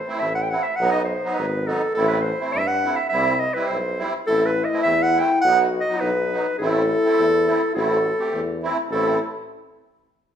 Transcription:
Already playing: clarinet C5
0.08 accordion A3 C4 E4
0.20 tuba A1, clarinet E5
0.35 clarinet F#5
0.43 clarinet G5
0.50 accordion A3 C4 E4, clarinet F#5
0.63 clarinet E5
0.76 tuba B1, accordion F#3, clarinet F#5
0.80 accordion B3 D#4
0.92 clarinet D#5
1.05 clarinet C5
1.24 accordion F#3 B3 D#4
1.35 tuba G#1, clarinet B4
1.67 accordion F#3 B3 D#4, clarinet A4
1.95 tuba A1, accordion A3 C4 E4, clarinet A4
2.08 clarinet B4
2.23 clarinet C5
2.40 accordion A3 C4 E4
2.53 tuba G2, clarinet E5
2.67 clarinet F#5
2.84 accordion A3 C4 E4
2.96 clarinet E5
3.09 accordion G3 C4 E4, clarinet E5
3.14 tuba C2
3.40 clarinet D#5
3.54 accordion G3 C4 E4, clarinet B4
3.67 tuba B1, clarinet C5
3.99 accordion G3 C4 E4
4.27 tuba A1, accordion A3 C4 E4, trombone E4, clarinet A4
4.46 clarinet B4
4.63 clarinet D#5 E5
4.72 accordion A3 C4 E4
4.83 tuba E2, clarinet E5
5.03 clarinet F#5
5.15 accordion A3 C4 E4
5.20 clarinet G5
5.41 tuba B1, accordion F#3 B3 D#4, trombone F#4, clarinet F#5
5.81 clarinet D#5
5.89 accordion F#3 B3 D#4
6.00 tuba B1, trombone D#4, clarinet B4
6.32 accordion F#3 B3 D#4
6.59 tuba A1, accordion A3 C4 E4, trombone E4, clarinet A4
7.04 accordion A3 C4 E4
7.18 tuba E2
7.46 accordion A3 C4 E4
7.75 tuba A1, accordion A3 C4 E4, trombone F#4, clarinet A4
8.19 accordion A3 C4 G4
8.33 tuba E2, trombone E4
8.63 accordion A3 C4 E4
8.90 tuba A1, accordion A3 C4 E4, trombone E4, clarinet A4

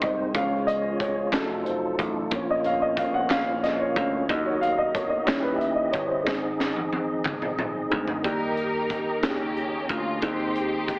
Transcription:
Already playing: french horn section D#3 G#3 C4 D#4, upright piano D#3 G#3 C4 G#4 A#4 C5 D#5, tonewheel organ G#3 C4 D#4 C5
0.01 slap bass C2, upright piano D#5, kick, closed hi-hat
0.33 slap bass C#2, french horn section F3 C#4 F4, upright piano F3 G#3 C#4 F5, tonewheel organ C#4 F4 C#5, kick, closed hi-hat
0.67 upright piano D#5, closed hi-hat
1.00 upright piano C#5, kick, closed hi-hat
1.31 slap bass F1, french horn section F#3 A3 D#4, upright piano F#3 A3 D#4 A4, tonewheel organ F4 A4, snare, clap, closed hi-hat
1.65 upright piano C5, closed hi-hat
1.99 slap bass A1, kick, closed hi-hat
2.30 slap bass A#1, french horn section F3 A#3 C#4, upright piano F3 A#3 C#4 C#5, tonewheel organ A#3 C#4 C#5, kick, closed hi-hat
2.50 upright piano D#5
2.64 upright piano F5, closed hi-hat
2.82 upright piano D#5
2.97 upright piano F5, kick, closed hi-hat
3.14 upright piano F#5
3.30 slap bass A#1, upright piano F5, snare, clap, closed hi-hat
3.63 upright piano D#5, snare, closed hi-hat
3.80 upright piano C#5
3.95 slap bass D2, upright piano F3 A#3 C#4 F5, kick, closed hi-hat
4.28 slap bass D#2, upright piano F#3 A#3 D#4 D#5, french horn section F#3 F#4 D#5, tonewheel organ D#4 F#4 D#5, kick, closed hi-hat
4.46 upright piano C#5
4.61 upright piano F5, closed hi-hat
4.78 upright piano D#5
4.94 upright piano C#5, kick, closed hi-hat
5.10 upright piano D#5
5.26 slap bass D#2, french horn section E3 G3 C#4, upright piano G3 C#4 E4 C#5, tonewheel organ E4 G4 D#5, snare, clap, closed hi-hat
5.42 upright piano B4
5.58 upright piano E5, closed hi-hat
5.75 upright piano D#5
5.91 slap bass G1, upright piano C#5, kick, closed hi-hat
6.07 upright piano C5
6.23 slap bass G#1, upright piano G#3 C4 D#4, french horn section G#3 C4 D#4, tonewheel organ C4 D#4, kick
6.27 tonewheel organ G#4, snare
6.60 snare
6.76 high tom
6.93 high tom
7.25 slap bass G#1, clap, mid tom
7.42 mid tom
7.59 mid tom
7.90 slap bass D2, upright piano G#3 C4 D#4, floor tom
8.08 floor tom
8.24 slap bass D#2, upright piano D#3 G3 A#3 D#4 G4, string section D#4 G4 A#4, tonewheel organ G4 A#4 D#5 A#5, kick, closed hi-hat
8.57 closed hi-hat
8.90 kick, closed hi-hat
9.22 slap bass D#2, upright piano C#3 A#3 C#4 D#4 F4, string section A#3 C#4 G4, tonewheel organ G4 C#5, snare, closed hi-hat
9.30 upright piano G4
9.57 closed hi-hat
9.89 slap bass D2, string section F4, kick, closed hi-hat
10.22 slap bass D#2, upright piano D#3 G#3 C4 D#4 C5, tonewheel organ G#3 C5 C6, string section C4 D#4 G4, kick, closed hi-hat
10.56 closed hi-hat
10.88 kick, closed hi-hat

